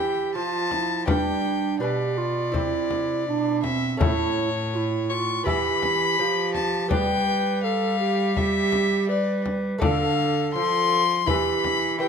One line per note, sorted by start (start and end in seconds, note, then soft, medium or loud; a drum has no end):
0.00 0.31 E3 medium
0.00 0.37 E3 medium
0.00 0.37 G4 medium
0.00 1.04 G4 soft
0.00 1.03 E5 soft
0.00 0.35 G5 medium
0.35 1.10 F3 medium
0.35 1.04 F3 soft
0.35 0.73 F4 medium
0.35 1.07 A5 medium
0.71 1.07 E4 medium
0.71 frame drum soft
1.06 1.77 G3 medium
1.06 1.81 G3 medium
1.06 1.78 D4 medium
1.06 1.82 D4 medium
1.06 1.78 B4 soft
1.06 1.79 G5 medium
1.06 frame drum medium
1.80 2.56 B2 medium
1.80 2.51 B2 soft
1.80 2.51 D4 soft
1.80 2.19 G4 medium
1.80 2.52 B4 soft
1.80 3.60 D5 medium
2.18 2.57 F4 medium
2.52 3.30 C3 medium
2.52 3.23 C3 medium
2.52 3.95 E4 soft
2.52 3.27 E4 medium
2.52 3.96 C5 soft
2.52 frame drum medium
2.91 frame drum soft
3.28 4.00 B2 medium
3.28 3.63 D4 medium
3.63 4.05 C4 medium
3.63 3.99 E5 medium
3.63 frame drum soft
3.97 5.42 A2 medium
3.97 5.43 A2 medium
3.97 5.40 A3 soft
3.97 5.41 C#4 soft
3.97 5.11 C#5 loud
3.97 5.42 E5 soft
3.97 frame drum medium
4.03 4.49 E4 medium
4.74 5.12 E4 medium
4.74 4.78 F4 medium
5.10 5.48 F4 medium
5.10 5.45 C#6 medium
5.44 6.20 E3 medium
5.44 6.15 E3 medium
5.44 6.86 B3 soft
5.44 6.87 G4 soft
5.44 6.19 G4 medium
5.44 6.88 E5 soft
5.44 6.53 B5 loud
5.44 frame drum medium
5.83 frame drum soft
6.19 6.91 F3 medium
6.19 6.87 F3 medium
6.19 6.92 G4 medium
6.55 6.90 A5 medium
6.55 frame drum soft
6.88 9.78 G3 medium
6.88 9.79 G3 medium
6.88 9.77 B3 soft
6.88 9.77 G4 medium
6.88 7.26 B4 medium
6.88 9.78 D5 soft
6.88 7.63 G5 loud
6.88 frame drum medium
7.27 7.66 B4 medium
7.64 7.99 A4 medium
7.64 8.38 F5 medium
8.00 8.36 G4 medium
8.37 9.11 G4 medium
8.37 9.08 E5 medium
8.37 frame drum medium
8.72 frame drum soft
9.09 9.82 B4 medium
9.09 9.45 D5 medium
9.46 frame drum soft
9.78 10.52 D3 medium
9.78 11.22 A3 medium
9.78 11.23 A4 medium
9.78 11.24 D5 medium
9.78 10.51 F5 loud
9.78 frame drum medium
9.83 11.03 A4 medium
10.54 11.24 F3 medium
10.54 11.27 F3 medium
10.54 11.28 C6 loud
11.26 12.08 E3 medium
11.26 11.97 E4 medium
11.26 12.00 G4 medium
11.26 11.98 B4 medium
11.26 12.00 B5 loud
11.26 frame drum medium
11.64 frame drum medium
11.98 12.08 E4 soft
11.98 12.08 G4 medium
11.98 12.08 B4 medium
11.98 12.08 G5 medium